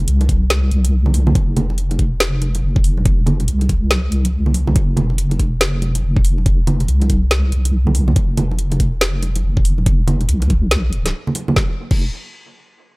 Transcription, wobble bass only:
0.08 0.70 C2 loud
0.72 1.34 C2 loud
1.35 2.62 F1 medium
2.63 3.47 F1 medium
3.48 4.74 C2 loud
4.76 6.02 F1 medium
6.04 6.87 F1 medium
6.88 7.51 C2 medium
7.52 8.15 C2 medium
8.16 9.42 F1 medium
9.44 10.28 F1 medium
10.29 11.13 C2 loud
11.57 11.70 F1 medium
11.91 12.11 F1 loud

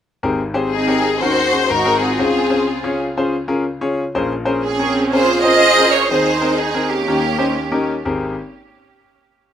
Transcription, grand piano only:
0.23 1.17 G#1 medium
0.23 1.17 G#2 medium
0.23 0.40 C4 medium
0.23 0.40 G4 medium
0.23 0.40 G#4 medium
0.23 0.40 A#4 medium
0.54 0.69 C4 medium
0.54 0.69 G4 medium
0.54 0.69 G#4 medium
0.54 0.69 C5 medium
0.88 1.09 C4 medium
0.88 1.09 G4 medium
0.88 1.09 G#4 medium
0.88 1.09 A#4 medium
1.22 1.67 D#2 medium
1.22 1.67 D#3 medium
1.22 1.38 C#4 medium
1.22 1.39 D#4 medium
1.22 1.39 F#4 medium
1.22 1.39 A#4 medium
1.52 1.67 C#4 medium
1.52 1.67 D#4 medium
1.52 1.67 F#4 medium
1.52 1.67 G#4 medium
1.70 2.16 G#1 medium
1.70 2.16 G#2 soft
1.85 2.07 C4 medium
1.85 2.07 F#4 medium
1.85 2.07 G#4 medium
1.85 2.07 A#4 medium
2.19 4.11 C#2 medium
2.19 4.11 C#3 medium
2.19 2.36 C#4 medium
2.19 2.36 F4 medium
2.19 2.36 G#4 medium
2.19 2.36 C5 medium
2.50 2.65 C#4 medium
2.50 2.65 F4 medium
2.50 2.65 G#4 medium
2.50 2.65 C5 medium
2.84 3.05 C#4 medium
2.84 3.05 F4 medium
2.84 3.05 G#4 medium
2.84 3.05 C#5 medium
3.17 3.34 C#4 medium
3.17 3.34 F4 medium
3.17 3.34 G#4 medium
3.17 3.34 C5 medium
3.48 3.63 C#4 medium
3.48 3.63 F4 medium
3.48 3.63 G#4 medium
3.48 3.63 A#4 medium
3.81 4.02 C#4 medium
3.81 4.02 F4 medium
3.81 4.02 G#4 medium
3.81 4.02 C#5 medium
4.15 6.06 A#1 medium
4.15 6.06 A#2 medium
4.15 4.31 C#4 medium
4.15 4.32 G#4 medium
4.15 4.32 A#4 medium
4.15 4.32 C5 medium
4.45 4.61 C#4 medium
4.45 4.61 G#4 medium
4.45 4.61 A#4 medium
4.45 4.60 C5 medium
4.79 5.00 C#4 medium
4.79 5.00 G#4 medium
4.79 5.00 A#4 medium
4.79 5.00 C#5 medium
5.13 5.30 C#4 medium
5.13 5.30 G#4 medium
5.13 5.29 A#4 medium
5.13 5.30 C5 medium
5.43 5.58 C#4 medium
5.43 5.58 G#4 medium
5.43 5.58 A#4 medium
5.43 5.58 C5 medium
5.78 5.98 C#4 medium
5.78 5.98 G#4 medium
5.78 5.98 A#4 medium
5.78 5.98 D#5 medium
6.11 7.04 D#2 medium
6.11 7.04 D#3 medium
6.11 6.27 C4 medium
6.11 6.27 D#4 medium
6.11 6.27 G#4 medium
6.11 6.27 C5 medium
6.41 6.56 C4 medium
6.41 6.56 D#4 medium
6.41 6.56 G#4 medium
6.41 6.56 A#4 medium
6.74 6.95 C4 medium
6.74 6.95 D#4 medium
6.74 6.95 G#4 medium
6.74 6.95 A#4 medium
7.08 8.01 D#2 medium
7.08 8.01 D#3 medium
7.08 7.24 C#4 medium
7.08 7.24 D#4 medium
7.08 7.24 G4 medium
7.08 7.24 A#4 medium
7.38 7.53 C#4 medium
7.38 7.53 D#4 medium
7.38 7.53 G4 medium
7.38 7.53 C5 medium
7.72 7.93 C#4 medium
7.72 7.93 D#4 medium
7.72 7.93 G4 medium
7.72 7.93 A#4 medium
8.05 8.34 G#1 medium
8.05 8.33 C4 medium
8.05 8.34 G4 medium
8.05 8.34 G#4 medium
8.05 8.34 A#4 medium

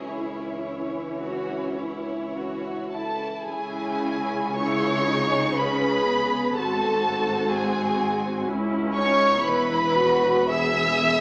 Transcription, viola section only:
0.02 3.23 E3 soft
0.02 3.23 C#4 soft
3.48 4.53 C#4 soft
3.48 4.53 E4 soft
4.57 5.08 E4 medium
4.57 5.55 G#4 medium
5.08 5.57 D#4 medium
5.58 6.07 C#4 medium
5.58 6.55 G#4 medium
6.07 6.56 B3 medium
6.57 8.49 C4 medium
6.57 8.49 F#4 medium
8.49 9.45 C#4 medium
8.49 8.97 E4 medium
8.96 9.45 D#4 medium
9.44 11.21 B3 medium
9.44 9.96 E4 medium
9.96 10.51 F#4 medium
10.51 11.21 G#4 medium

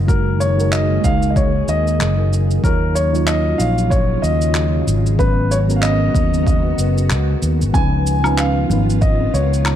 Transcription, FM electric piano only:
0.00 0.10 C#4 medium
0.00 0.11 B4 medium
0.07 0.54 G#3 medium
0.07 0.54 D#4 medium
0.07 0.55 F#4 medium
0.07 0.55 A#4 medium
0.57 1.00 G#3 medium
0.57 1.01 D#4 medium
0.57 1.01 F#4 medium
0.57 1.01 A#4 medium
1.01 2.59 G#3 medium
1.01 2.60 D#4 medium
1.01 2.61 F#4 medium
1.07 2.62 A#4 medium
2.62 3.09 F#3 medium
2.62 3.09 D#4 medium
2.62 3.10 F4 medium
2.62 3.10 C#5 medium
3.13 3.55 F#3 medium
3.13 3.56 D#4 medium
3.13 3.56 F4 medium
3.13 3.57 C#5 medium
3.57 5.14 F#3 medium
3.57 5.15 D#4 medium
3.57 5.16 F4 medium
3.62 5.17 C#5 medium
5.18 5.64 F#3 medium
5.18 5.65 B3 medium
5.18 5.65 C#4 medium
5.18 5.66 B4 medium
5.68 6.10 F#3 medium
5.68 6.11 B3 medium
5.68 6.12 C#4 medium
5.68 6.12 A#4 medium
6.11 7.69 F#3 medium
6.11 7.70 B3 medium
6.11 7.71 C#4 medium
6.17 7.72 A#4 medium
7.73 8.20 F3 medium
7.73 8.20 C#4 medium
7.73 8.21 D#4 medium
7.73 8.21 B4 medium
8.23 8.66 F3 medium
8.23 8.66 C#4 medium
8.23 8.67 D#4 medium
8.23 8.67 B4 medium
8.67 9.76 F3 medium
8.67 9.76 C#4 medium
8.67 9.76 D#4 medium
8.73 9.76 B4 medium

